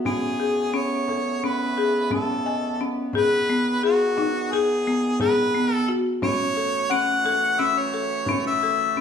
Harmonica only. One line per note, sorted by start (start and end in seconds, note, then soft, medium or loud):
0.06 0.77 G#4 medium
0.75 1.46 C#5 medium
1.44 2.12 B4 medium
2.13 2.85 A4 medium
3.16 3.79 B4 loud
3.85 4.53 F#4 medium
4.51 5.20 G#4 medium
5.21 5.74 B4 loud
5.74 5.93 A4 loud
6.23 6.94 C#5 loud
6.92 7.61 F#5 loud
7.60 7.80 E5 loud
7.78 8.46 C#5 medium
8.47 9.01 E5 loud